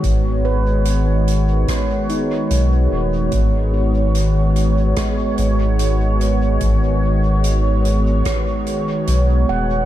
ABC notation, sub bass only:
X:1
M:4/4
L:1/8
Q:"Swing 16ths" 1/4=73
K:G#m
V:1 name="Sub bass" clef=bass
G,,,4 z2 B,,, D,,, | G,,,4 z G,,,3 | G,,,4 z2 B,,, D,,, |]